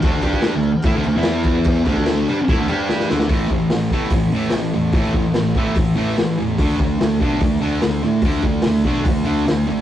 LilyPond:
<<
  \new Staff \with { instrumentName = "Distorted electric guitar" } { \clef bass \time 4/4 \key d \major \tempo 4 = 146 <d a d'>8 <g d' g'>8. <d a>8 r16 <a e'>16 <d a>16 <d a>16 <e b e'>4~ <e b e'>16~ | <e b e'>8 <d a d'>4 <g d'>16 r16 <a e'>16 <d a>16 <g d' g'>4 <d a d'>8 | <a, e a>8 <a, e>8 <a, e>8 <a, e a>8 <a, e>8 <a, e a>8 <a, e>8 <a, e>8 | <a, e a>8 <a, e>8 <a, e>8 <a, e a>8 <a, e>8 <a, e a>8 <a, e>8 <a, e>8 |
<d a d'>8 <d a>8 <d a>8 <d a d'>8 <d a>8 <d a d'>8 <d a>8 <d a>8 | <d a d'>8 <d a>8 <d a>8 <d a d'>8 <d a>8 <d a d'>8 <d a>8 <d a>8 | }
  \new Staff \with { instrumentName = "Fingered electric bass" } { \clef bass \time 4/4 \key d \major d,8 g,8. d,8 r16 a,16 d,16 d,16 e,4~ e,16~ | e,8 d,4 g,16 r16 a,16 d,16 g,4 d,8 | a,,8 a,,8 a,,8 g,,8 a,,8 a,,8 a,,8 e,8 | a,,8 a,,8 a,,8 g,,8 a,,8 a,,8 a,,8 e,8 |
d,8 d,8 d,8 b,,8 d,8 d,8 d,8 a,8 | d,8 d,8 d,8 b,,8 d,8 d,8 d,8 gis,,8 | }
  \new DrumStaff \with { instrumentName = "Drums" } \drummode { \time 4/4 <cymc bd>8 <cymc bd>16 bd16 <cymc sn>8 cymc8 <cymc bd>8 cymc8 <cymc sn>8 <cymc bd>8 | <cymc bd>8 <cymc bd>16 bd16 <cymc sn>8 cymc8 <cymc bd>8 cymc8 sn16 sn16 sn16 sn16 | <hho bd>8 bd8 <hho sn>8 bd8 <hho bd>4 <hho sn>4 | <hho bd>8 bd8 <hho sn>8 bd8 <hho bd>4 <hho sn>4 |
<hho bd>8 bd8 <hho sn>8 bd8 <hho bd>4 <hho sn>8 sn8 | <hho bd>8 bd8 <hho sn>8 bd8 <hho bd>4 <hho sn>4 | }
>>